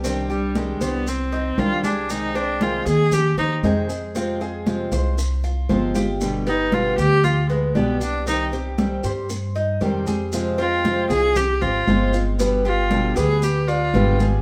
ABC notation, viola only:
X:1
M:4/4
L:1/8
Q:1/4=116
K:Cm
V:1 name="Viola"
z G, A, =B, C2 F D | E D F A G E z2 | z8 | z E F G F A, =B, D |
E z6 z | z F2 A G F2 z | z F2 A G F2 z |]